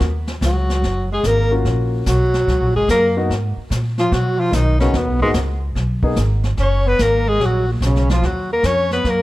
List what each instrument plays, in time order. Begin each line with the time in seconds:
0.00 upright bass D#2, brush sweep, kick, snare
0.27 snare
0.41 upright bass C#2, tenor saxophone F#3, kick, snare, hi-hat pedal
0.46 alto saxophone F#4
0.70 snare
0.82 upright bass F#1, brush sweep, kick, snare
1.12 tenor saxophone G#3, alto saxophone G#4
1.23 upright bass G#1, tenor saxophone A#3, alto saxophone A#4, kick, snare, hi-hat pedal
1.51 grand piano A#3 C#4 F4 F#4
1.65 upright bass A#1, brush sweep, kick, snare
2.06 upright bass B1, tenor saxophone F#3, alto saxophone F#4, kick, snare, hi-hat pedal
2.34 snare
2.47 upright bass C#2, brush sweep, kick, snare
2.61 upright bass A#1
2.74 upright bass F#1, tenor saxophone G#3, alto saxophone G#4
2.89 upright bass F#2, tenor saxophone A#3, alto saxophone A#4, kick, snare, hi-hat pedal
3.17 grand piano A#3 B3 D#4 F#4
3.29 upright bass G#2, brush sweep, kick, snare
3.57 muted upright bass stroke
3.70 upright bass A#2, kick, snare, hi-hat pedal
3.98 tenor saxophone F3, alto saxophone F4, snare
4.12 upright bass B2, tenor saxophone F#3, alto saxophone F#4, brush sweep, kick, snare
4.38 tenor saxophone F3, alto saxophone F4
4.51 upright bass B1, tenor saxophone D#3, alto saxophone D#4, kick, snare, hi-hat pedal
4.79 tenor saxophone C#3, grand piano A#3 B3 D#4 F#4, alto saxophone C#4, snare
4.93 upright bass D#2, tenor saxophone B2, alto saxophone B3, brush sweep, kick, snare
5.07 upright bass B1
5.20 upright bass G#1, tenor saxophone G#2, alto saxophone G#3, grand piano A#3 B3 D#4 F#4
5.34 upright bass C#2, kick, snare, hi-hat pedal
5.75 upright bass B1, brush sweep, kick, snare
6.03 grand piano A#3 B3 D#4 G#4, kick
6.16 upright bass G#1, kick, snare, hi-hat pedal
6.43 snare
6.57 upright bass F#1, tenor saxophone C#4, brush sweep, kick, snare
6.62 alto saxophone C#5
6.87 tenor saxophone B3, alto saxophone B4
6.99 upright bass G#1, tenor saxophone A#3, alto saxophone A#4, kick, snare, hi-hat pedal
7.27 tenor saxophone G#3, alto saxophone G#4
7.40 upright bass A#1, tenor saxophone F#3, brush sweep, kick, snare
7.45 alto saxophone F#4
7.68 tenor saxophone A#2
7.73 alto saxophone A#3
7.80 upright bass B1, tenor saxophone C#3, kick, snare, hi-hat pedal
7.85 alto saxophone C#4
7.96 snare
8.09 tenor saxophone F3, alto saxophone F4, snare
8.23 upright bass D#2, tenor saxophone F#3, alto saxophone F#4, brush sweep, kick, snare
8.52 tenor saxophone A#3, alto saxophone A#4
8.63 upright bass F2, tenor saxophone C#4, alto saxophone C#5, kick, snare, hi-hat pedal
8.91 tenor saxophone B3, alto saxophone B4, snare
9.04 upright bass F#2, tenor saxophone A#3, brush sweep, kick, snare
9.10 alto saxophone A#4